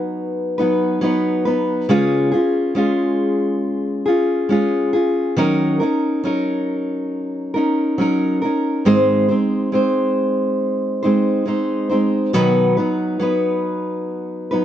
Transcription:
steel-string acoustic guitar
Already playing: F#3 B3 D#4 B4
0.58 F#3 B3 D#4 B4
1.01 F#3 B3 D#4 B4
1.45 F#3 B3 D#4 B4
1.89 C#3 G#3 C#4 F4 G#4
2.32 C#4 F4 G#4
2.75 G#3 C#4 F4 G#4
4.06 C#4 F4 G#4
4.49 G#3 C#4 F4 G#4
4.93 C#4 F4 G#4
5.37 D#3 F#3 C#4 D#4 A#4
5.80 C#4 D#4 A#4
6.23 F#3 C#4 D#4 A#4
7.54 C#4 D#4 A#4
7.98 F#3 C#4 D#4 A#4
8.42 C#4 D#4 A#4
8.85 G#2 D#3 G#3 C4 D#4 C5
9.28 G#3 C4 D#4 C5
9.72 G#3 C4 D#4 C5
11.03 G#3 C4 D#4 C5
11.46 G#3 C4 D#4 C5
11.89 G#3 C4 D#4 C5
12.33 B2 D#3 F#3 B3 D#4 B4
12.77 F#3 B3 D#4 B4
13.20 F#3 B3 D#4 B4
14.51 F#3 B3 D#4 B4

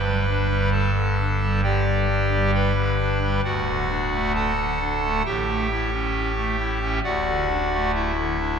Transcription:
pipe organ
Already playing: G1 G2 B4 G5 B5
0.04 G3
0.27 D4
0.49 G3
0.72 A4 A5
0.95 D3
1.19 D4
1.41 G3
1.63 D3 G4 D5 G5
1.86 G3
2.10 D4
2.32 G3
2.54 B4 G5 B5
2.77 D3
2.99 D4
3.21 G3
3.44 D1 D2 F#4 D5 F#5
3.67 D3
3.89 D4
4.13 A3
4.35 A4 F#5 A5
4.58 D3
4.80 D4
5.03 A3
5.25 A1 A2 G4 E5 G5
5.48 A3
5.71 E4
5.92 C#4
6.37 A3
6.59 E4
6.82 C#4
7.03 D1 D2 F#4 D5 F#5
7.26 D3
7.49 D4
7.71 A3
7.94 E4 E5
8.17 D3
8.39 D4

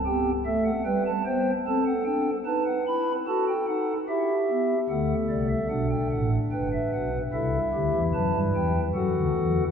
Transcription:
pipe organ
0.06 B3 G4 G5
0.46 A3 A4 E5
0.65 F#5
0.85 G3 B4 G5
1.06 A5
1.26 B3 C5 G5
1.67 C4 A4 A5
1.86 F#5
2.05 D4 G5
2.45 D#4 B4 A5
2.66 F#5
2.87 E4 B5
3.27 F#4 A4 A5
3.49 G5
3.68 D#4 F#5
4.09 E4 G4 E5
4.50 B3
4.89 D2 D3 A3 A4 F#5
5.29 C2 C3 D5
5.49 E5
5.69 B1 B2 D4 F#5
5.91 G5
6.11 A1 A2 F#5
6.52 G1 G2 B4 G5
6.73 E5
6.93 B1 B2 F#5
7.33 C2 C3 E4 A4 E5
7.74 D2 D3 G4
7.94 E2 E3
8.14 F#2 F#3 B4 A5
8.34 G2 G3
8.55 E2 E3 G5
8.94 F#2 F#3 F#4 A4 F#5
9.15 D2 D3
9.36 E2 E3

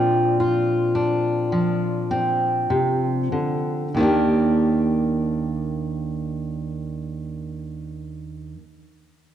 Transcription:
steel-string acoustic guitar
Already playing: A#2 F3 C4 D4 F4
0.40 F4
0.95 D4
1.52 F3
2.11 C4
2.70 C3
3.32 D3
3.94 D#2 D#3 A#3
4.00 D4 G4

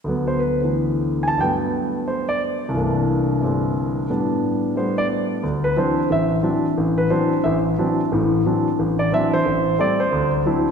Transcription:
grand piano
0.04 D2 D3 F#3
0.09 B3
0.28 C5
0.39 B4
0.61 D3 E3 A3
1.23 G#5
1.28 A5
1.38 G2 F#3 A3 G5
1.42 B3
2.08 C5
2.29 D5
2.69 C2 G2
2.74 E3 A3 A#3
2.80 D4
3.41 G2 D3 G3 A3 C4
4.09 A2 G3 B3 D4
4.75 G3 A3 B3 C5
4.98 D5
5.43 D2
5.64 B4
5.76 E3 F#3 C4 D4 C5
6.10 A1 E5
6.43 E3 F#3 C4 D4
6.77 A1
6.98 B4
7.10 E3 F#3 C4 D4 C5
7.44 A1 E5
7.79 E3 F#3 C4 D4
8.12 A1 A2
8.45 E3 F#3 C4 D4
8.79 A1
8.99 D5
9.12 E3 F#3 C4 D4 E5
9.33 C5
9.46 A1
9.79 G3 A3 C4 D5
10.00 C5
10.12 D2
10.46 F#3 C4 D4 E4

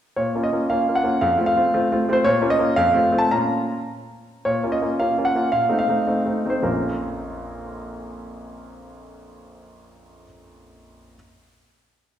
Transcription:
grand piano
0.16 A#2 C#5
0.35 A#3 C#4 F4
0.43 D#5
0.53 A#3 C#4 F4
0.70 A#3 C#4 F4 F5
0.89 A#3 C#4 F4
0.95 F#5
1.03 A#3 C#4 F4
1.21 F2 F5
1.37 A3 C4 F4
1.46 F5
1.56 A3 C4 F4
1.74 A3 C4 F4
1.92 A3 C4 F4
2.09 A3 C4 F4
2.13 C5
2.24 A#2 C#5
2.42 A#3 C#4 F4
2.50 D#5
2.59 A#3 C#4 F4
2.76 F2 F5
2.94 A3 C4 F4
3.12 A3 C4 F4
3.18 A5
3.31 A#2 C#4 F4 A#5
4.45 A#2 C#5
4.63 A#3 C#4 F4
4.72 D#5
4.82 A#3 C#4 F4
5.00 A#3 C#4 F4 F5
5.18 A#3 C#4 F4
5.25 F#5
5.35 A#3 C#4 F4
5.52 A#2 F5
5.69 A3 C4 D#4
5.79 F5
5.88 A3 C4 D#4
6.07 A3 C4 D#4
6.25 A3 C4 D#4
6.45 A3 C4 D#4
6.50 C5
6.62 A#1 F2 F3 A#3 C#4 F4 A#4

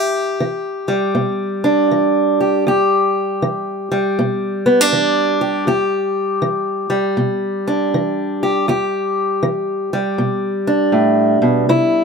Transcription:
steel-string acoustic guitar
Already playing: E2 G4
0.40 E3
0.88 G3
1.15 B2
1.64 D4
1.91 E3
2.41 G4
2.67 E2 G4
3.42 E3
3.92 G3
4.19 B2
4.66 B3
4.81 D4
4.93 E3
5.41 G4
5.67 E2 G4
6.42 E3
6.90 G3
7.17 B2
7.67 D4
7.94 E3
8.43 G4
8.68 E2 G4
9.43 E3
9.93 G3
10.18 B2
10.67 D4
10.92 A2
11.42 B2
11.69 C3 E4

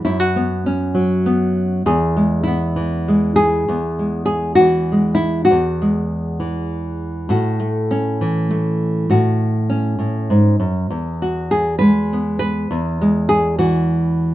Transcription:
nylon-string guitar
Already playing: B3
0.05 F#2 E4
0.20 F#4
0.36 B3
0.66 C#4
0.95 F#3
1.26 B3
1.86 E2 G#4
2.17 G#3
2.43 B3 E4
2.76 E3
3.08 G#3
3.36 G#4
3.68 E2 B3
3.99 G#3
4.26 G#4
4.55 F#4
4.60 E3
4.92 G#3
5.15 E4
5.45 F#4
5.51 E2
5.82 G#3
6.40 E3
7.29 A2 F#4
7.60 A3
7.91 C#4
8.21 E3
8.51 A3
9.10 A2 F#4
9.70 C#4
9.99 A2
10.30 G#2
10.60 F#2
10.90 E2
11.22 F#4
11.51 G#4
11.79 G#3 B4
12.13 B3
12.39 B4
12.71 E2
13.01 G#3
13.29 G#4
13.59 E3 F#4

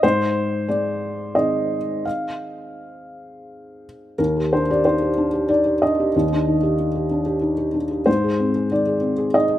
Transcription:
felt piano
0.03 G#2 C5
0.69 G#3 D5
1.35 D#3 C4 G#4 D#5
2.05 F5
4.18 D#2 A#4
4.36 G4
4.53 D4 C5
4.70 G4 D5
4.85 D#3 C5
5.02 G4
5.17 D4
5.33 G4
5.49 D#4 D5
5.66 G4
5.82 D4 D#5
6.00 G4
6.16 D#2
6.33 D4
6.48 D#3
6.63 G4
6.79 D#3
6.95 G4
7.11 D4
7.26 G4
7.41 D#4
7.58 G4
7.74 D4
7.91 G4
8.06 G#2 C5
8.24 G#4
8.40 C4
8.55 G#4
8.71 D#3 D5
8.87 G#4
9.01 C4
9.18 G#4
9.34 D#4 D#5
9.49 G#4

